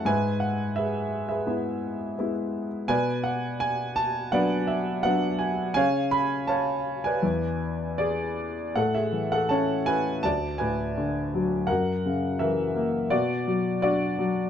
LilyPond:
<<
  \new Staff \with { instrumentName = "Grand piano" } { \time 4/4 \key e \mixolydian \tempo 4 = 83 << { gis''8 fis''8 e''8. e''4. r8. | gis''8 fis''8 gis''8 a''8 fis''8 e''8 fis''8 gis''8 | gis''8 b''8 a''8. gis''4~ gis''16 d''4 | \key a \major fis''16 e''8 fis''16 a''8 gis''8 a''8 gis''4. |
fis''4 e''4 d''4 d''4 | } \\ { <b' e''>4 <gis' b'>8. <gis' b'>2 r16 | <b' d''>2 <b' d''>2 | <cis'' eis''>4 <cis'' eis''>8. <b' d''>4~ <b' d''>16 gis'4 | a'16 gis'8 a'16 cis''8 b'8 d''8 b'4. |
ais'4 ais'4 fis'4 fis'4 | } >> }
  \new Staff \with { instrumentName = "Grand piano" } { \clef bass \time 4/4 \key e \mixolydian gis,2 <gis b e'>4 <gis b e'>4 | b,2 <fis b d'>4 <fis b d'>4 | cis2 e,2 | \key a \major a,8 e8 cis'8 e'8 d,8 a,8 d8 fis8 |
fis,8 cis8 e8 ais8 b,8 fis8 d'8 fis8 | }
>>